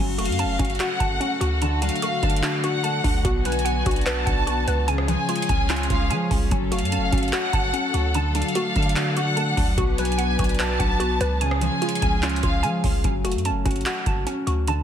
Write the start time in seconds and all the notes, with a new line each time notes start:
Already playing: F#3
0.00 F#1 C#3 A3 C#4 F#4
0.18 A3 F#4 F5, closed hi-hat
0.25 F#2, closed hi-hat
0.32 closed hi-hat
0.39 C#4 A5, closed hi-hat
0.44 F#1
0.59 F#1 C#4 F#4, kick, closed hi-hat
0.65 closed hi-hat
0.70 closed hi-hat
0.75 closed hi-hat
0.80 F#4 F#5, clap, closed hi-hat
1.00 F#1 F#4 A5, kick, closed hi-hat
1.20 C#4, closed hi-hat
1.41 D2 F#4, closed hi-hat
1.62 D3 A5, closed hi-hat
1.82 F#3 D4 F5, closed hi-hat
1.89 closed hi-hat
1.96 closed hi-hat
2.02 A3 F#4, closed hi-hat
2.23 D3 D4 A5, kick, closed hi-hat
2.30 closed hi-hat
2.36 closed hi-hat
2.43 D4 F#4, clap, closed hi-hat
2.64 D4 F#4 F#5, closed hi-hat
2.84 A3 A5, closed hi-hat
3.04 D2 D4, kick, open hi-hat
3.25 B1 B2 B3 F#4, kick, closed hi-hat
3.45 F#3 B4 G#5, closed hi-hat
3.52 closed hi-hat
3.59 closed hi-hat
3.65 B3 F#5, closed hi-hat
3.86 B1 D4 F#4, kick, closed hi-hat
3.91 closed hi-hat
3.96 closed hi-hat
4.01 closed hi-hat
4.06 F#4 B4 A5, clap, closed hi-hat
4.26 B1 D4 F#5, kick, closed hi-hat
4.47 B3 F#4, closed hi-hat
4.68 C#2 B4, closed hi-hat
4.88 C#3 F3 C#4 G#4 G#5, closed hi-hat
4.98 cross-stick
5.08 F3 C#4 G#5, closed hi-hat
5.28 G#3 F4, closed hi-hat
5.36 closed hi-hat
5.42 closed hi-hat
5.49 C#2 C#4 G#5, kick, closed hi-hat
5.70 C#4 F4, clap, closed hi-hat
5.76 closed hi-hat
5.83 closed hi-hat
5.90 C#2 C#4 F4 F5, kick, closed hi-hat
6.10 F3 G#3 G#5, closed hi-hat
6.31 C#2 C#4, kick, open hi-hat
6.51 F#1 F#3 C#4 A4, kick, closed hi-hat
6.71 A3 F#4 F5, closed hi-hat
6.79 F#2, closed hi-hat
6.85 closed hi-hat
6.92 C#4 A5, closed hi-hat
6.97 F#1
7.12 F#1 C#4 F#4, kick, closed hi-hat
7.18 closed hi-hat
7.23 closed hi-hat
7.28 closed hi-hat
7.33 F#4 F#5, clap, closed hi-hat
7.53 F#1 F#4 A5, kick, closed hi-hat
7.74 C#4, closed hi-hat
7.94 D2 F#4, closed hi-hat
8.15 D3 F#3 D4 A5, closed hi-hat
8.35 F#3 D4 F5, closed hi-hat
8.42 closed hi-hat
8.48 closed hi-hat
8.55 A3 F#4, closed hi-hat
8.76 D3 D4 A5, kick, closed hi-hat
8.82 closed hi-hat
8.89 closed hi-hat
8.96 D4 F#4, clap, closed hi-hat
9.17 D4 F#4 F#5, closed hi-hat
9.36 A3 A5, closed hi-hat
9.57 D2 D4, kick, open hi-hat
9.78 B1 B2 D4 F#4 B4, kick, closed hi-hat
9.98 F#3 B4 G#5, closed hi-hat
10.05 closed hi-hat
10.12 closed hi-hat
10.18 B3 F#5, closed hi-hat
10.39 B1 D4 F#4, kick, closed hi-hat
10.44 closed hi-hat
10.49 closed hi-hat
10.54 closed hi-hat
10.59 F#4 B4 A5, clap, closed hi-hat
10.79 B1 D4 F#5, kick, closed hi-hat
11.00 B3 F#4, closed hi-hat
11.21 C#2 B4, closed hi-hat
11.41 C#3 F3 C#4 G#4 G#5, closed hi-hat
11.51 cross-stick
11.61 F3 C#4 G#5, closed hi-hat
11.82 G#3 F4, closed hi-hat
11.89 closed hi-hat
11.95 closed hi-hat
12.02 C#2 C#4 G#5, kick, closed hi-hat
12.23 C#4 F4, clap, closed hi-hat
12.29 closed hi-hat
12.36 closed hi-hat
12.43 C#2 C#4 F4 F5, kick, closed hi-hat
12.63 F3 G#3 G#5, closed hi-hat
12.84 C#2 C#4, kick, open hi-hat
13.04 F#1 F#3 C#4, kick, closed hi-hat
13.24 A3 F#4, closed hi-hat
13.32 F#2, closed hi-hat
13.38 closed hi-hat
13.45 C#4 A5, closed hi-hat
13.50 F#1
13.65 F#1 C#4 F#4, kick, closed hi-hat
13.71 closed hi-hat
13.76 closed hi-hat
13.81 closed hi-hat
13.86 F#4 F#5, clap, closed hi-hat
14.06 F#1 F#4 A5, kick, closed hi-hat
14.27 C#4, closed hi-hat
14.47 D2 F#4, closed hi-hat
14.68 D3 A5, closed hi-hat